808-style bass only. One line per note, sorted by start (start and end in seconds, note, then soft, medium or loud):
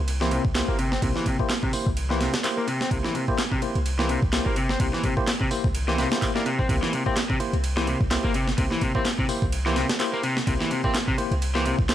0.00 0.40 C2 medium
0.45 0.62 C2 medium
0.69 0.98 G1 medium
1.02 1.12 C2 loud
1.87 2.29 C2 medium
2.91 3.01 C2 loud
3.75 4.18 C2 medium
4.22 4.40 C2 medium
4.46 4.76 G1 medium
4.80 4.90 C2 loud
5.64 6.07 C2 medium
6.69 6.79 C2 loud
7.53 7.95 C2 medium
8.01 8.18 C2 medium
8.25 8.54 G1 medium
8.58 8.68 C2 loud
9.42 9.84 C2 medium
10.47 10.57 C2 loud
11.31 11.73 C2 medium
11.79 11.95 C2 medium